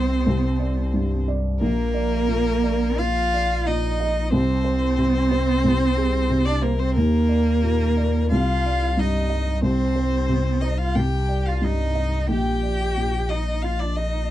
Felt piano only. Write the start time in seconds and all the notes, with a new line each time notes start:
Already playing: C2 C3 C5
0.26 C2
0.59 D5
0.94 G2
1.28 D5
1.61 A#1
1.94 D5
2.28 A#2
2.63 D5
3.00 A#2
3.34 D5
3.67 A#2
4.00 D#5
4.32 C2
4.64 C5
4.97 C3
5.31 C5
5.64 C2
5.97 G#4
6.29 C3
6.62 C5
6.97 D#2
7.29 D5
7.63 A#2
7.97 D5
8.31 C2
8.66 D5
8.97 G2
9.30 D#5
9.62 C2
9.95 C5
10.28 C3
10.62 C5
10.95 C2
11.28 D5
11.62 G2
11.95 D#5
12.28 A#1
12.63 D5
12.97 A#2
13.30 D#5
13.63 A#2
13.97 D#5